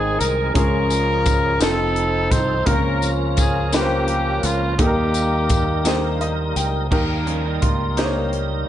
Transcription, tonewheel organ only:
Already playing: D#3 G#3 C4 G#4
0.55 E3 G#3 C#4 G#4
0.62 F3
1.60 F3 C4 D#4 A4
2.66 F3 A#3 C#4 A#4
4.79 G3 A#3 D#4 A#4
6.91 G3 A#3 D#4 A#4

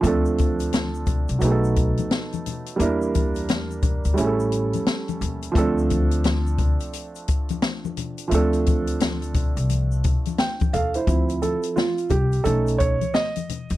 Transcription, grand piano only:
0.01 F3 A3 C4
0.05 D4 A4
1.39 F#3 A3 B3
1.43 D#4 G#4
1.51 A4
2.76 G3 A#3 D4
2.81 E4 A#4
4.14 G3 A3 C#4
4.19 E4 G#4
4.26 A4
5.52 F3 A3 C4
5.57 D4 A4
8.28 F3 A3 C4
8.33 D4 A4
10.39 G5
10.73 A4 F5
10.95 E4 C5
11.07 F3 C4 E4
11.42 A4
11.76 F4
12.10 G4
12.44 A3 C#4 D#4 A4
12.78 C#5
13.14 D#5

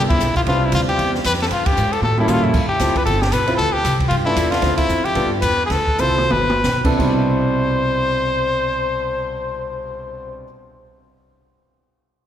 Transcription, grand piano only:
0.47 G3 C4 D4 E4 B4
2.19 G3 A#3 C#4 E4 A4
2.80 C4 E4 F4 A4
3.47 C4 E4 F4 B4
4.26 B3 D4 F4 A4
4.62 C4 E4 F4 A4
5.15 B3 D4 F4 A4
6.00 C4 E4 F4 A4
6.85 C3 B3 D4 E4 A4
6.97 B2 C3 G3 D4 E4

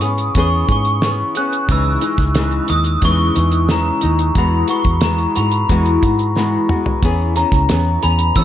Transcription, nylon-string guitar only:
0.01 B3 C#4 G#4
0.36 E3 B3 C#4 G#4
0.68 B3 C#4 G#4
1.03 E3 B3 C#4 G#4
1.36 B3 C#4 G#4
1.69 C#3 E3 G#3 D#4
2.02 E3 G#3 D#4
2.36 C#3 E3 G#3 D#4
2.69 G#3 D#4
3.03 C#3 E3 G#3 D#4
3.35 E3 G#3 D#4
3.69 C#3 E3 G#3 D#4
4.02 G#3 D#4
4.36 E3 G#3 B3 F#4
4.68 G#3 B3 F#4
5.02 E3 G#3 B3 F#4
5.36 G#3 B3 F#4
5.69 E3 G#3 B3 F#4
6.03 G#3 B3 F#4
6.35 E3 G#3 B3 F#4
6.69 G#3 B3 F#4
7.03 E3 B3 C#4 G#4
7.36 B3 C#4 G#4
7.69 E3 B3 C#4 G#4
8.02 B3 C#4 G#4
8.36 E3 B3 C#4 G#4

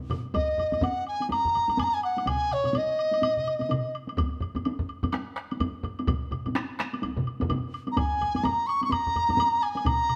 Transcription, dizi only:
0.34 D#5
0.83 F#5
1.08 G#5
1.31 A#5
1.79 G#5
1.84 A#5
1.94 G#5
2.04 F#5
2.28 G#5
2.53 C#5
2.77 D#5
7.92 A#5
7.98 G#5
8.44 A#5
8.67 C#6
8.84 C#6
8.92 A#5
9.63 G#5
9.87 A#5

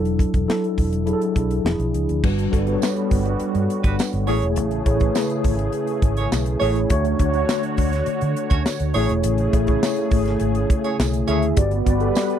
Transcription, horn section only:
3.84 G3 B3 F#4 B4
4.28 A3 C#4 G#4 C#5
6.18 A3 C#4 G#4 C#5
6.60 A3 C#4 G#4 C#5
8.50 A3 C#4 F#4 C#5
8.94 A3 C#4 G#4 C#5
10.84 A3 C#4 G#4 C#5
11.28 A3 C#4 G#4 C#5

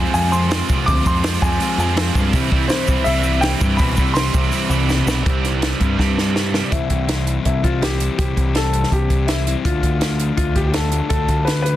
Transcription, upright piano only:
Already playing: G#5
0.14 G#5
0.32 C6
0.86 D6
1.07 C6
1.42 G#5
1.80 G#5
2.68 C5
3.04 E5
3.41 G5
3.77 B5
4.14 C6
6.72 E4
7.46 E4
7.64 F4
7.82 G4
8.18 G4
8.56 A4
8.93 G4
9.27 E4
9.66 F4
10.37 F4
10.56 G4
10.66 G4
10.73 A4
11.09 A4
11.45 B4
11.62 B4

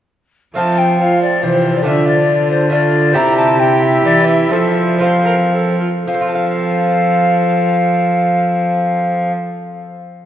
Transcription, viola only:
0.57 F4
1.00 F4
1.42 F4
1.85 F4
2.71 F4
3.14 G4
3.58 G4
4.52 A4
5.01 C5
5.26 A#4
5.53 A4
5.80 F4
6.07 A4

